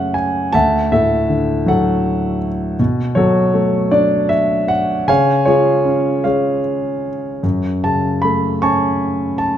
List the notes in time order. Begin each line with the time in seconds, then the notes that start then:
Already playing: F#2 C#3 A3 C#4 G#4 A4 C#5 E5 F#5
0.14 G#5
0.53 D2 E5 F#5 A5
0.92 A2 A4 E5
1.29 D3
1.66 F#3 A4 F#5
2.79 B2
3.15 F#3 F#4 A4 C#5
3.54 A3
3.91 D4 D5
4.29 E5
4.68 F#5
5.08 C#3 C#5 F5 G#5
5.45 G#3 F4 G#4 C#5
5.85 C#4
6.24 G#3 G#4 C#5 F5
7.43 F#2
7.84 C#3 A5
8.22 A3 B5
8.62 C#4 G#5 A5 C#6
9.38 A5